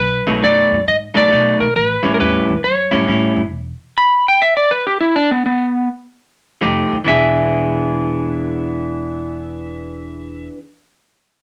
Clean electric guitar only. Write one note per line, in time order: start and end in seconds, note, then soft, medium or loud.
0.27 0.40 B2 medium
0.27 0.41 F#3 medium
0.27 0.42 A3 medium
0.27 0.42 D#4 medium
0.42 0.75 B2 medium
0.42 0.75 F#3 medium
0.42 0.76 A3 medium
0.42 0.76 D#4 medium
1.14 1.29 B2 medium
1.14 1.29 F#3 medium
1.14 1.29 A3 medium
1.14 1.30 D#4 medium
1.30 1.63 B2 medium
1.30 1.64 F#3 medium
1.30 1.64 A3 medium
1.30 1.64 D#4 medium
2.03 2.17 A2 medium
2.03 2.18 G3 medium
2.03 2.18 C#4 medium
2.03 2.19 E4 loud
2.19 2.52 A2 medium
2.19 2.52 G3 medium
2.19 2.52 C#4 medium
2.19 2.53 E4 medium
2.91 3.06 A2 medium
2.91 3.06 G3 medium
2.91 3.06 C#4 medium
2.91 3.07 E4 medium
3.07 3.40 A2 medium
3.07 3.40 G3 medium
3.07 3.41 C#4 medium
3.07 3.41 E4 medium
6.61 6.95 F3 medium
6.61 6.95 A3 medium
6.61 6.95 D#4 medium
6.61 6.95 G4 medium
7.04 10.54 E3 medium
7.04 10.56 B3 medium
7.04 10.57 D4 medium
7.09 10.59 G#4 loud